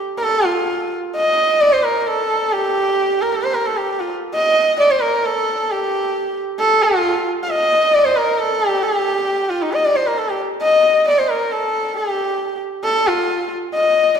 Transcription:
sarangi
0.18 A#4
0.23 A4
0.46 F4
1.17 D#5
1.61 D5
1.73 C5
1.85 A#4
2.00 A#4
2.07 A4
2.52 G4
3.21 A#4
3.32 A4
3.43 C5
3.54 A#4
3.66 A4
3.77 G4
4.00 F4
4.35 D#5
4.80 D5
4.91 C5
5.02 A#4
5.25 A4
5.71 G4
6.60 A4
6.83 F4
7.43 F5
7.50 D#5
7.95 D5
8.06 C5
8.16 A#4
8.39 A4
8.68 G4
8.83 G4
9.50 F4
9.62 D#4
9.73 D#5
9.85 D5
9.96 C5
10.07 A#4
10.18 A4
10.29 G4
10.62 D#5
11.08 D5
11.19 C5
11.30 A#4
11.52 A4
11.97 G4
12.84 A4
13.08 F4
13.74 D#5

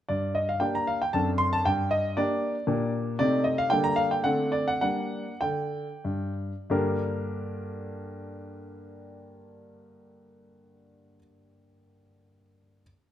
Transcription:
grand piano
0.09 G2 D5
0.35 D#5
0.49 F5
0.60 A#3 D4 G4 G5
0.75 A#5
0.87 F5
1.02 G5
1.13 F#2 C4 D4 A4 A5
1.38 C6
1.53 A5
1.65 G2 G5
1.91 D#5
2.17 A#3 D4 G4 D5
2.67 A#2 A#3 D4 G4
3.19 C3 A3 C4 D#4 D5
3.44 D#5
3.58 F5
3.70 D3 G3 A#3 D4 G5
3.84 A#5
3.96 F5
4.11 G5
4.24 D3 A3 C4 D4 F#5
4.52 D5
4.68 F#5
4.81 G3 A#3 D4 F#5
5.41 D3 G5
6.05 G2
6.70 G2 D3 A#3 D4 G4 A#4

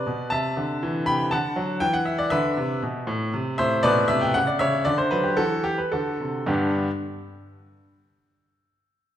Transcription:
grand piano
Already playing: B4 D5
0.06 B2
0.30 C3 E5 A5
0.57 D3
0.83 E3
1.06 C3 G5 B5
1.31 D3 F#5 A5
1.56 F#3
1.80 E3 G5
1.93 F#5
2.05 E5
2.18 D5
2.30 D3 B4 E5
2.57 C3
2.83 B2
3.07 A2
3.34 C3
3.58 A2 C5 E5
3.83 B2 B4 D5
4.08 C3 E5
4.21 G5
4.34 C#3 F#5
4.47 D5
4.59 C#3 C#5 E5
4.85 D3 D5
4.98 C5
5.11 F#3 B4
5.24 G4
5.37 E3 F#4 A4
5.64 G4
5.78 B4
5.92 D3 F#4 A4
6.20 C3
6.46 G2 D3 B3 D4 G4

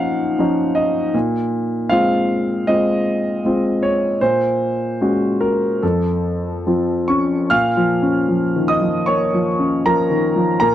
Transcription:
grand piano
Already playing: A#2 F3 C#4 D#4 F5 F#5 G#5
0.39 F3 C#4 D#4
0.75 D#5
1.14 A#2
1.89 G#3 C4 F4 F5
2.67 G#3 C4 F4 D#5
3.45 G#3 C4 F4
3.83 C#5
4.21 A#2 C5
5.01 G#3 C#4 F#4
5.41 A#4
5.83 F2 A4
6.67 F3 C4 F4
7.08 C#4 C#6
7.50 A#2 F5 F6
7.77 F3
8.02 C#4
8.29 F3
8.56 D#3
8.68 D#5 D#6
8.81 F3
9.06 A#3 C#5 C#6
9.34 F3
9.59 C#4
9.86 F3 A#4 A#5
10.10 D#3
10.36 F3
10.60 A#2 A#4 A#5

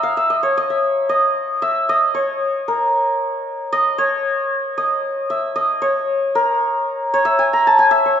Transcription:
santur
Already playing: G#5 A#5 C#6
0.03 F5
0.17 E5
0.30 D#5
0.43 C#5
0.57 D#5
0.70 E5
1.09 D#5
1.62 E5
1.89 D#5
2.14 C#5
2.68 A#4
3.73 D#5
3.98 C#5
4.78 D#5
5.30 E5
5.56 D#5
5.82 C#5
6.35 A#4
7.14 C#5
7.25 E5
7.39 G#5
7.53 A#5
7.67 A5
7.79 G#5
7.91 E5
8.06 C#5

